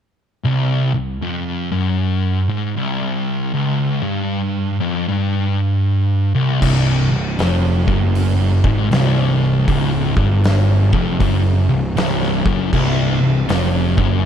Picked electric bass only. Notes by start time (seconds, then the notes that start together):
6.62 C1
7.11 C1
7.39 F1
7.88 F#1
8.64 G#1
8.91 C1
9.68 C#1
10.17 G1
10.93 F1
11.20 F#1
11.69 C1
11.96 C1
12.45 F#1
12.72 C1
13.20 C1
13.48 F1
13.98 F#1